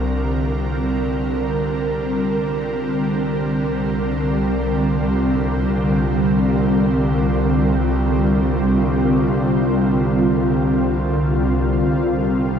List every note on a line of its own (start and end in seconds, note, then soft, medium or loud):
0.00 2.81 C2 medium
0.00 12.59 D3 medium
0.00 12.59 G3 medium
0.00 12.59 C4 medium
0.00 2.88 F4 medium
0.00 12.59 A#4 medium
2.85 12.59 C2 medium
4.26 12.59 F4 medium